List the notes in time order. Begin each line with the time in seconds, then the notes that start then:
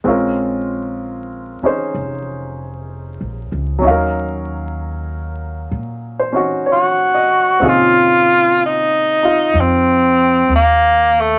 0.04 A#1 G#3 C4 C#4 F4
0.09 A#4
1.62 C#4 D#4 G#4 C5, muted upright bass stroke
1.94 F1
3.21 A#1
3.52 C#2
3.78 F#3 C#4
3.83 D#2 D#4 F5
3.90 A#4
5.71 A#2
6.19 C5
6.32 C#4 D#4 F#4
6.66 C#5
6.72 F#4
7.14 D#5
7.60 A#2 C#3 C4 D#4 F4
7.64 G#4
7.69 F4
8.66 D#4
9.23 D#4 F4
9.54 F2
9.61 C4
10.49 D#2
10.56 A#3
11.20 A3